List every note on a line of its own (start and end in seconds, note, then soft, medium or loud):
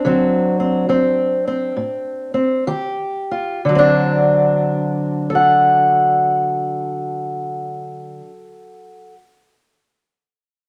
0.00 2.68 D4 medium
0.05 0.82 D3 medium
0.05 0.88 F#3 soft
0.05 0.59 C4 soft
0.60 0.88 C4 soft
0.89 1.70 F#3 medium
0.89 1.46 C4 soft
1.47 2.33 C4 soft
1.77 2.61 A2 medium
2.34 2.63 C4 soft
2.67 3.57 D#3 medium
2.67 3.60 G4 medium
3.31 3.61 F4 medium
3.65 8.21 D3 medium
3.69 8.25 F#3 medium
3.75 5.29 C4 medium
3.75 8.30 D4 medium
5.30 9.14 A4 medium
5.35 9.17 F#5 medium